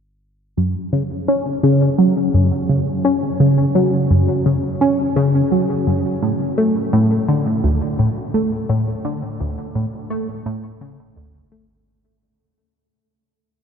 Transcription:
synth arpeggio sound
0.57 F#2
0.93 C#3
1.28 C#4
1.63 C#3
1.99 F#3
2.34 F#2
2.69 C#3
3.05 C#4
3.40 C#3
3.75 F#3
4.11 F#2
4.46 C#3
4.81 C#4
5.16 C#3
5.52 F#3
5.87 F#2
6.23 A2
6.58 A3
6.93 A2
7.28 D3
7.64 D2
7.99 A2
8.34 A3
8.69 A2
9.05 D3
9.40 D2
9.75 A2
10.10 A3
10.46 A2
10.81 C#3
11.16 D2
11.52 A3

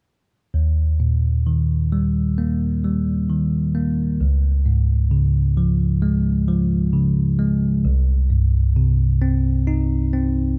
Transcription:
tine electric piano
0.54 D#2
1.00 A#2
1.47 D#3
1.92 G3
2.38 A#3
2.84 G3
3.30 D#3
3.75 A#3
4.21 C#2
4.66 G#2
5.11 C#3
5.57 F3
6.02 G#3
6.48 F3
6.93 C#3
7.39 G#3
7.85 C2
8.30 G2
8.76 C3
9.22 C4
9.67 D#4
10.13 C4

